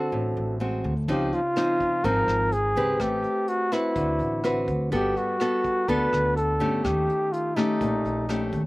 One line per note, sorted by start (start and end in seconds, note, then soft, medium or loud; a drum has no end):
0.00 0.10 D3 medium
0.00 0.57 C4 medium
0.00 0.57 F#4 medium
0.00 0.61 A4 loud
0.12 0.35 A1 medium
0.12 1.06 A2 medium
0.37 0.81 A1 medium
0.60 0.93 G#3 soft
0.60 0.93 C4 soft
0.60 0.93 F#4 medium
0.84 1.07 D2 loud
1.08 1.31 C#2 medium
1.08 2.02 C#3 medium
1.08 1.39 F3 medium
1.08 1.40 C4 medium
1.08 1.40 D#4 medium
1.08 1.35 G4 medium
1.08 kick medium
1.08 closed hi-hat soft
1.33 2.06 F4 loud
1.33 closed hi-hat soft
1.56 2.00 F3 medium
1.56 2.01 C4 medium
1.56 2.01 D#4 medium
1.56 cross-stick medium
1.56 closed hi-hat soft
1.80 kick medium
1.80 closed hi-hat soft
2.04 2.27 G#1 medium
2.04 2.98 G#2 medium
2.04 2.52 F3 medium
2.04 2.52 C4 medium
2.04 2.53 D#4 medium
2.04 2.54 A#4 loud
2.04 kick medium
2.04 closed hi-hat soft
2.28 2.73 G#1 medium
2.28 cross-stick medium
2.28 closed hi-hat soft
2.52 3.03 G#4 medium
2.52 closed hi-hat soft
2.76 2.98 C#2 medium
2.76 3.69 C4 medium
2.76 3.69 G4 medium
2.76 3.69 B4 medium
2.76 closed hi-hat soft
3.00 3.23 A1 medium
3.00 3.94 A3 medium
3.00 3.50 G4 medium
3.00 kick medium
3.00 cross-stick medium
3.00 closed hi-hat soft
3.24 closed hi-hat soft
3.48 3.75 F#4 medium
3.48 closed hi-hat soft
3.72 4.40 C4 medium
3.72 4.69 E4 medium
3.72 4.40 F#4 medium
3.72 4.41 B4 medium
3.72 cross-stick medium
3.72 closed hi-hat soft
3.96 4.18 D2 medium
3.96 4.90 D3 medium
3.96 kick medium
3.96 closed hi-hat soft
4.19 4.64 A1 medium
4.19 closed hi-hat soft
4.44 4.90 C4 medium
4.44 4.90 F#4 medium
4.44 4.91 B4 medium
4.44 cross-stick medium
4.44 closed hi-hat soft
4.68 4.90 D2 medium
4.68 kick medium
4.68 closed hi-hat soft
4.92 5.14 G1 medium
4.92 5.86 G3 medium
4.92 5.36 B3 medium
4.92 5.36 F#4 medium
4.92 5.19 G4 medium
4.92 5.37 A4 medium
4.92 kick medium
4.92 closed hi-hat soft
5.17 5.90 F#4 medium
5.17 closed hi-hat soft
5.40 5.85 B3 medium
5.40 5.85 F#4 medium
5.40 5.85 A4 medium
5.40 cross-stick medium
5.40 closed hi-hat soft
5.64 kick medium
5.64 closed hi-hat soft
5.88 6.11 D2 medium
5.88 6.82 D3 medium
5.88 6.36 B3 medium
5.88 6.37 F#4 medium
5.88 6.37 A4 medium
5.88 6.36 B4 loud
5.88 kick medium
5.88 closed hi-hat soft
6.13 6.57 D2 medium
6.13 cross-stick soft
6.13 closed hi-hat soft
6.36 6.86 A4 medium
6.36 closed hi-hat soft
6.60 6.83 G1 medium
6.60 7.53 A3 medium
6.60 7.53 C#4 medium
6.60 7.53 G4 medium
6.60 closed hi-hat soft
6.84 7.07 D#2 medium
6.84 7.78 D#3 medium
6.84 7.34 G4 medium
6.84 kick medium
6.84 cross-stick medium
6.84 closed hi-hat soft
7.09 closed hi-hat soft
7.32 7.57 F4 medium
7.32 closed hi-hat soft
7.56 8.25 A3 medium
7.56 8.25 C#4 medium
7.56 8.52 D#4 medium
7.56 8.25 G4 medium
7.56 cross-stick medium
7.56 closed hi-hat soft
7.81 8.03 A#1 medium
7.81 8.66 A#2 medium
7.81 kick medium
7.81 closed hi-hat soft
8.05 8.49 A#1 medium
8.05 closed hi-hat soft
8.29 8.61 A3 soft
8.29 8.61 C#4 medium
8.29 8.61 G4 soft
8.29 cross-stick medium
8.29 closed hi-hat soft
8.53 8.66 D#2 medium
8.53 kick medium
8.53 closed hi-hat soft